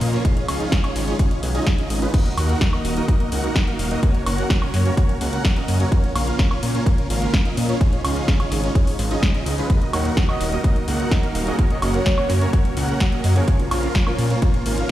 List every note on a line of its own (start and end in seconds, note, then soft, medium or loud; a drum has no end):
0.00 0.21 A#2 medium
0.00 0.18 A#2 loud
0.00 0.21 C#3 medium
0.00 2.10 F3 medium
0.00 0.10 A#3 medium
0.00 0.10 C#4 medium
0.00 0.21 C#4 medium
0.00 0.10 F4 medium
0.00 2.10 F4 medium
0.00 0.10 A#4 medium
0.00 0.10 D#5 loud
0.00 open hi-hat loud
0.13 0.22 A#3 loud
0.13 0.22 C#4 medium
0.13 0.22 F4 medium
0.13 0.22 A#4 medium
0.13 0.22 C#5 loud
0.13 closed hi-hat soft
0.25 2.12 D#3 medium
0.25 2.12 G#3 medium
0.25 0.46 C#4 loud
0.25 2.12 C#4 medium
0.25 0.46 D#4 medium
0.25 0.46 F4 medium
0.25 0.46 G#4 medium
0.25 0.46 C#5 loud
0.25 kick loud
0.25 closed hi-hat loud
0.37 closed hi-hat soft
0.48 0.65 C#2 loud
0.48 0.81 C#4 medium
0.48 0.81 D#4 medium
0.48 0.81 F4 medium
0.48 0.81 G#4 medium
0.48 0.81 F5 medium
0.48 open hi-hat loud
0.48 high woodblock medium
0.60 closed hi-hat soft
0.72 kick loud
0.72 snare loud
0.72 closed hi-hat loud
0.84 1.05 C#4 medium
0.84 1.05 D#4 medium
0.84 1.05 F4 medium
0.84 1.05 G#4 medium
0.84 1.05 C#5 loud
0.84 closed hi-hat soft
0.84 high woodblock medium
0.96 1.12 G#1 medium
0.96 snare soft
0.96 open hi-hat loud
1.08 1.17 C#4 medium
1.08 1.17 D#4 medium
1.08 1.17 F4 medium
1.08 1.17 G#4 medium
1.08 1.17 C#5 loud
1.08 closed hi-hat soft
1.19 1.40 C#4 loud
1.19 1.40 D#4 medium
1.19 1.40 F4 medium
1.19 1.40 G#4 medium
1.19 1.40 C#5 loud
1.19 kick loud
1.19 closed hi-hat loud
1.31 closed hi-hat soft
1.43 1.60 B1 loud
1.43 open hi-hat loud
1.55 1.72 C#4 medium
1.55 1.72 D#4 medium
1.55 1.72 F4 medium
1.55 1.72 G#4 medium
1.55 1.72 D#5 loud
1.55 closed hi-hat soft
1.67 kick loud
1.67 snare loud
1.67 closed hi-hat loud
1.78 1.99 C#4 medium
1.78 1.99 D#4 medium
1.78 1.99 F4 medium
1.78 1.99 G#4 medium
1.78 1.99 D#5 medium
1.78 closed hi-hat soft
1.90 2.07 G#1 medium
1.90 open hi-hat loud
2.02 2.11 C#4 loud
2.02 2.11 D#4 medium
2.02 2.11 F4 medium
2.02 2.11 G#4 medium
2.02 2.11 B4 loud
2.02 closed hi-hat soft
2.14 7.77 A#2 medium
2.14 4.01 D#3 medium
2.14 5.88 F#3 medium
2.14 2.35 A#3 loud
2.14 2.35 D#4 medium
2.14 4.01 D#4 medium
2.14 2.35 F#4 medium
2.14 5.88 F#4 medium
2.14 2.35 A#4 medium
2.14 2.35 D#5 loud
2.14 kick loud
2.14 closed hi-hat medium
2.14 crash loud
2.26 closed hi-hat soft
2.37 2.54 D#2 loud
2.37 2.70 A#3 medium
2.37 2.70 D#4 medium
2.37 2.70 F#4 medium
2.37 2.70 A#4 medium
2.37 2.70 F#5 medium
2.37 open hi-hat loud
2.37 high woodblock medium
2.49 closed hi-hat medium
2.61 kick loud
2.61 snare loud
2.61 closed hi-hat medium
2.73 2.94 A#3 medium
2.73 2.94 D#4 medium
2.73 2.94 F#4 medium
2.73 2.94 A#4 medium
2.73 2.94 D#5 medium
2.73 high woodblock medium
2.85 3.01 D#1 medium
2.85 open hi-hat loud
2.96 3.06 A#3 medium
2.96 3.06 D#4 medium
2.96 3.06 F#4 medium
2.96 3.06 A#4 medium
2.96 3.06 D#5 loud
2.96 closed hi-hat medium
3.08 3.29 A#3 loud
3.08 3.29 D#4 medium
3.08 3.29 F#4 medium
3.08 3.29 A#4 medium
3.08 3.29 D#5 loud
3.08 kick loud
3.08 closed hi-hat medium
3.20 closed hi-hat soft
3.32 3.49 C#2 loud
3.32 3.65 A#3 medium
3.32 3.65 D#4 medium
3.32 3.65 F#4 medium
3.32 3.65 A#4 medium
3.32 3.65 F#5 medium
3.32 open hi-hat loud
3.44 closed hi-hat medium
3.56 kick loud
3.56 snare loud
3.56 closed hi-hat medium
3.67 3.88 A#3 medium
3.67 3.88 D#4 medium
3.67 3.88 F#4 medium
3.67 3.88 A#4 medium
3.67 3.88 F5 loud
3.67 closed hi-hat soft
3.79 3.96 D#1 medium
3.79 open hi-hat loud
3.91 4.00 A#3 loud
3.91 4.00 D#4 medium
3.91 4.00 F#4 medium
3.91 4.00 A#4 medium
3.91 4.00 D#5 loud
3.91 closed hi-hat medium
4.03 9.66 C#3 medium
4.03 4.24 A#3 loud
4.03 7.77 C#4 medium
4.03 4.24 C#4 medium
4.03 4.24 F#4 medium
4.03 4.24 A#4 medium
4.03 4.24 C#5 loud
4.03 kick loud
4.03 closed hi-hat medium
4.15 closed hi-hat soft
4.26 4.43 F#1 loud
4.26 4.59 A#3 medium
4.26 4.59 C#4 medium
4.26 4.59 F#4 medium
4.26 4.59 A#4 medium
4.26 4.59 F#5 medium
4.26 open hi-hat loud
4.26 high woodblock medium
4.38 closed hi-hat medium
4.50 kick loud
4.50 snare loud
4.50 closed hi-hat medium
4.62 4.83 A#3 medium
4.62 4.83 C#4 medium
4.62 4.83 F#4 medium
4.62 4.83 A#4 medium
4.62 4.83 C#5 loud
4.62 high woodblock medium
4.74 4.91 F#2 medium
4.74 snare soft
4.74 open hi-hat loud
4.86 4.95 A#3 medium
4.86 4.95 C#4 medium
4.86 4.95 F#4 medium
4.86 4.95 A#4 medium
4.86 4.95 C#5 loud
4.86 closed hi-hat medium
4.97 5.18 A#3 medium
4.97 5.18 C#4 medium
4.97 5.18 F#4 medium
4.97 5.18 A#4 medium
4.97 5.18 C#5 loud
4.97 kick loud
4.97 closed hi-hat medium
5.09 closed hi-hat soft
5.21 5.38 C#2 medium
5.21 5.54 A#3 medium
5.21 5.54 C#4 medium
5.21 5.54 F#4 medium
5.21 5.54 A#4 medium
5.21 5.54 F#5 medium
5.21 open hi-hat loud
5.33 closed hi-hat medium
5.45 kick loud
5.45 snare loud
5.45 closed hi-hat medium
5.56 5.77 A#3 medium
5.56 5.77 C#4 medium
5.56 5.77 F#4 medium
5.56 5.77 A#4 medium
5.56 5.77 D#5 loud
5.56 closed hi-hat soft
5.68 5.85 F#2 medium
5.68 open hi-hat loud
5.80 5.89 A#3 medium
5.80 5.89 C#4 medium
5.80 5.89 F#4 medium
5.80 5.89 A#4 medium
5.80 5.89 C#5 loud
5.80 closed hi-hat medium
5.92 9.66 F3 medium
5.92 6.13 A#3 loud
5.92 6.13 C#4 medium
5.92 6.13 F4 medium
5.92 9.66 F4 medium
5.92 6.13 A#4 loud
5.92 6.13 C#5 loud
5.92 kick loud
5.92 closed hi-hat medium
6.04 closed hi-hat soft
6.15 6.32 A#1 loud
6.15 6.48 A#3 medium
6.15 6.48 C#4 medium
6.15 6.48 F4 medium
6.15 6.48 A#4 medium
6.15 6.48 F5 medium
6.15 open hi-hat loud
6.15 high woodblock medium
6.27 closed hi-hat medium
6.39 kick loud
6.39 snare loud
6.39 closed hi-hat medium
6.51 6.72 A#3 medium
6.51 6.72 C#4 medium
6.51 6.72 F4 medium
6.51 6.72 A#4 medium
6.51 6.72 C#5 loud
6.51 high woodblock medium
6.63 6.79 A#2 medium
6.63 open hi-hat loud
6.75 6.84 A#3 medium
6.75 6.84 C#4 medium
6.75 6.84 F4 medium
6.75 6.84 A#4 medium
6.75 6.84 C#5 loud
6.75 closed hi-hat medium
6.86 7.07 A#3 medium
6.86 7.07 C#4 medium
6.86 7.07 F4 medium
6.86 7.07 A#4 medium
6.86 7.07 C#5 loud
6.86 kick loud
6.86 closed hi-hat medium
6.98 closed hi-hat soft
7.10 7.27 G#1 loud
7.10 7.43 A#3 medium
7.10 7.43 C#4 medium
7.10 7.43 F4 medium
7.10 7.43 A#4 medium
7.10 7.43 F5 medium
7.10 open hi-hat loud
7.22 closed hi-hat soft
7.34 kick loud
7.34 snare loud
7.34 closed hi-hat medium
7.45 7.66 A#3 loud
7.45 7.66 C#4 medium
7.45 7.66 F4 medium
7.45 7.66 A#4 medium
7.45 7.66 D#5 loud
7.45 closed hi-hat soft
7.57 7.74 A#2 medium
7.57 open hi-hat loud
7.69 7.78 A#3 loud
7.69 7.78 C#4 medium
7.69 7.78 F4 medium
7.69 7.78 A#4 medium
7.69 7.78 C#5 loud
7.69 closed hi-hat medium
7.81 9.68 G#3 medium
7.81 8.02 C#4 loud
7.81 8.02 D#4 medium
7.81 11.55 D#4 medium
7.81 8.02 F4 medium
7.81 8.02 G#4 medium
7.81 8.02 C#5 loud
7.81 kick loud
7.81 closed hi-hat medium
7.93 closed hi-hat soft
8.04 8.21 C#2 loud
8.04 8.37 C#4 medium
8.04 8.37 D#4 medium
8.04 8.37 F4 medium
8.04 8.37 G#4 medium
8.04 8.37 F5 medium
8.04 open hi-hat loud
8.04 high woodblock medium
8.16 closed hi-hat medium
8.28 kick loud
8.28 snare loud
8.28 closed hi-hat medium
8.40 8.61 C#4 medium
8.40 8.61 D#4 medium
8.40 8.61 F4 medium
8.40 8.61 G#4 medium
8.40 8.61 C#5 loud
8.40 closed hi-hat soft
8.40 high woodblock medium
8.52 8.68 G#1 medium
8.52 snare soft
8.52 open hi-hat loud
8.64 8.73 C#4 medium
8.64 8.73 D#4 medium
8.64 8.73 F4 medium
8.64 8.73 G#4 medium
8.64 8.73 C#5 loud
8.64 closed hi-hat medium
8.75 8.96 C#4 loud
8.75 8.96 D#4 medium
8.75 8.96 F4 medium
8.75 8.96 G#4 medium
8.75 8.96 C#5 loud
8.75 kick loud
8.75 closed hi-hat medium
8.87 open hi-hat medium
8.99 9.16 G#1 medium
8.99 open hi-hat loud
9.11 9.28 C#4 medium
9.11 9.28 D#4 medium
9.11 9.28 F4 medium
9.11 9.28 G#4 medium
9.11 9.28 D#5 loud
9.11 closed hi-hat soft
9.23 kick loud
9.23 snare loud
9.23 closed hi-hat medium
9.35 9.55 C#4 medium
9.35 9.55 D#4 medium
9.35 9.55 F4 medium
9.35 9.55 G#4 medium
9.35 9.55 D#5 medium
9.35 closed hi-hat soft
9.46 9.63 C#2 medium
9.46 open hi-hat loud
9.58 9.67 C#4 loud
9.58 9.67 D#4 medium
9.58 9.67 F4 medium
9.58 9.67 G#4 medium
9.58 9.67 B4 loud
9.58 closed hi-hat medium
9.70 11.57 A#2 medium
9.70 11.57 D#3 medium
9.70 13.44 F#3 medium
9.70 9.91 A#3 loud
9.70 9.91 D#4 medium
9.70 13.44 F#4 medium
9.70 9.91 F#4 medium
9.70 9.91 A#4 medium
9.70 9.91 D#5 loud
9.70 kick loud
9.70 closed hi-hat medium
9.82 closed hi-hat soft
9.93 10.10 D#2 loud
9.93 10.15 F#3 medium
9.93 10.15 A#3 medium
9.93 10.26 A#3 medium
9.93 10.16 D#4 medium
9.93 10.26 D#4 medium
9.93 10.26 F#4 medium
9.93 10.16 F#4 loud
9.93 10.26 A#4 medium
9.93 10.26 F#5 medium
9.93 open hi-hat loud
9.93 high woodblock medium
10.05 closed hi-hat medium
10.17 kick loud
10.17 snare loud
10.17 closed hi-hat medium
10.28 10.61 F#3 medium
10.28 10.61 A#3 medium
10.28 10.50 A#3 medium
10.28 10.50 D#4 medium
10.28 10.62 D#4 medium
10.28 10.50 F#4 medium
10.28 10.62 F#4 loud
10.28 10.50 A#4 medium
10.28 10.43 D#5 medium
10.28 10.50 D#5 medium
10.28 high woodblock medium
10.41 10.57 D#1 medium
10.41 open hi-hat loud
10.52 10.62 A#3 medium
10.52 10.62 D#4 medium
10.52 10.62 F#4 medium
10.52 10.62 A#4 medium
10.52 10.62 D#5 loud
10.52 closed hi-hat soft
10.64 11.08 F#3 medium
10.64 11.09 A#3 medium
10.64 10.85 A#3 loud
10.64 11.09 D#4 medium
10.64 10.85 D#4 medium
10.64 10.85 F#4 medium
10.64 11.09 F#4 medium
10.64 10.85 A#4 medium
10.64 10.85 D#5 loud
10.64 kick loud
10.64 closed hi-hat medium
10.76 closed hi-hat soft
10.88 11.05 C#2 loud
10.88 11.21 A#3 medium
10.88 11.21 D#4 medium
10.88 11.21 F#4 medium
10.88 11.21 A#4 medium
10.88 11.21 F#5 loud
10.88 open hi-hat loud
11.00 closed hi-hat medium
11.11 11.44 F#3 medium
11.11 11.44 A#3 medium
11.11 11.44 D#4 medium
11.11 11.44 F#4 loud
11.11 kick loud
11.11 snare loud
11.11 closed hi-hat medium
11.23 11.44 A#3 loud
11.23 11.44 D#4 medium
11.23 11.44 F#4 medium
11.23 11.44 A#4 medium
11.23 11.44 F5 loud
11.23 closed hi-hat soft
11.35 11.52 D#1 medium
11.35 open hi-hat loud
11.46 11.79 F#3 medium
11.46 11.80 A#3 medium
11.46 11.56 A#3 loud
11.46 11.80 C#4 medium
11.46 11.56 D#4 medium
11.46 11.56 F#4 medium
11.46 11.80 G#4 medium
11.46 11.56 A#4 medium
11.46 11.56 D#5 loud
11.46 closed hi-hat medium
11.59 14.91 A#2 medium
11.59 14.91 C#3 medium
11.59 11.80 A#3 loud
11.59 11.80 C#4 medium
11.59 14.91 C#4 medium
11.59 11.80 F#4 medium
11.59 11.80 A#4 medium
11.59 11.80 C#5 loud
11.59 kick loud
11.59 closed hi-hat medium
11.70 11.78 D#5 medium
11.70 closed hi-hat soft
11.82 11.99 F#1 loud
11.82 12.04 F#3 medium
11.82 12.04 A#3 medium
11.82 12.15 A#3 medium
11.82 12.15 C#4 medium
11.82 12.05 C#4 medium
11.82 12.15 F#4 medium
11.82 12.05 F#4 medium
11.82 12.15 A#4 medium
11.82 11.90 D#5 medium
11.82 12.15 F#5 medium
11.82 open hi-hat loud
11.82 high woodblock medium
11.94 12.30 C#5 loud
11.94 closed hi-hat medium
12.06 kick loud
12.06 snare loud
12.06 closed hi-hat medium
12.17 12.50 F#3 medium
12.17 12.50 A#3 medium
12.17 12.39 A#3 medium
12.17 12.39 C#4 medium
12.17 12.51 C#4 medium
12.17 12.39 F#4 medium
12.17 12.51 F#4 loud
12.17 12.39 A#4 medium
12.17 12.39 C#5 loud
12.17 high woodblock medium
12.30 12.46 F#2 medium
12.30 snare soft
12.30 open hi-hat loud
12.41 12.50 A#3 medium
12.41 12.50 C#4 medium
12.41 12.50 F#4 medium
12.41 12.50 A#4 medium
12.41 12.50 C#5 loud
12.41 closed hi-hat medium
12.53 12.97 F#3 medium
12.53 12.98 A#3 medium
12.53 12.74 A#3 loud
12.53 12.74 C#4 medium
12.53 12.98 C#4 medium
12.53 12.74 F#4 medium
12.53 12.98 F#4 medium
12.53 12.74 A#4 medium
12.53 12.74 C#5 loud
12.53 kick loud
12.53 closed hi-hat medium
12.65 closed hi-hat soft
12.77 12.94 C#2 medium
12.77 13.09 A#3 medium
12.77 13.09 C#4 medium
12.77 13.09 F#4 medium
12.77 13.09 A#4 medium
12.77 13.09 F#5 medium
12.77 open hi-hat loud
12.89 closed hi-hat medium
13.00 13.33 F#3 medium
13.00 13.33 A#3 medium
13.00 13.33 C#4 medium
13.00 13.33 F#4 loud
13.00 kick loud
13.00 snare loud
13.00 closed hi-hat medium
13.12 13.33 A#3 loud
13.12 13.33 C#4 medium
13.12 13.33 F#4 medium
13.12 13.33 A#4 medium
13.12 13.33 D#5 loud
13.12 closed hi-hat soft
13.24 13.41 F#2 medium
13.24 open hi-hat loud
13.35 13.68 F3 medium
13.35 13.68 A#3 medium
13.35 13.45 A#3 loud
13.35 13.45 C#4 medium
13.35 13.69 C#4 medium
13.35 13.45 F#4 medium
13.35 13.69 G#4 medium
13.35 13.45 A#4 medium
13.35 13.45 C#5 loud
13.35 closed hi-hat medium
13.48 14.91 F3 medium
13.48 13.69 A#3 loud
13.48 13.69 C#4 medium
13.48 13.69 F4 loud
13.48 14.91 F4 medium
13.48 13.69 A#4 medium
13.48 13.69 C#5 loud
13.48 kick loud
13.48 closed hi-hat medium
13.60 closed hi-hat soft
13.71 13.88 A#1 loud
13.71 13.93 F3 medium
13.71 13.93 A#3 medium
13.71 14.04 A#3 medium
13.71 14.04 C#4 medium
13.71 13.94 C#4 medium
13.71 14.04 F4 medium
13.71 13.94 F4 loud
13.71 14.04 A#4 medium
13.71 14.04 F5 medium
13.71 open hi-hat loud
13.71 high woodblock medium
13.83 closed hi-hat medium
13.95 kick loud
13.95 snare loud
13.95 closed hi-hat medium
14.06 14.39 F3 loud
14.06 14.39 A#3 medium
14.06 14.28 A#3 medium
14.06 14.28 C#4 medium
14.06 14.40 C#4 medium
14.06 14.28 F4 medium
14.06 14.40 F4 loud
14.06 14.28 A#4 medium
14.06 14.28 C#5 loud
14.06 high woodblock medium
14.19 14.35 A#2 medium
14.19 open hi-hat medium
14.30 14.39 A#3 medium
14.30 14.39 C#4 medium
14.30 14.39 F4 medium
14.30 14.39 A#4 medium
14.30 14.39 C#5 loud
14.30 closed hi-hat medium
14.42 14.86 F3 medium
14.42 14.87 A#3 medium
14.42 14.63 A#3 loud
14.42 14.63 C#4 medium
14.42 14.87 C#4 medium
14.42 14.63 F4 medium
14.42 14.87 F4 medium
14.42 14.63 A#4 medium
14.42 14.63 C#5 loud
14.42 kick loud
14.42 closed hi-hat medium
14.54 closed hi-hat soft
14.66 14.83 G#1 medium
14.66 14.91 A#3 medium
14.66 14.91 C#4 medium
14.66 14.91 F4 medium
14.66 14.91 A#4 medium
14.66 14.91 F5 medium
14.66 open hi-hat loud
14.78 closed hi-hat medium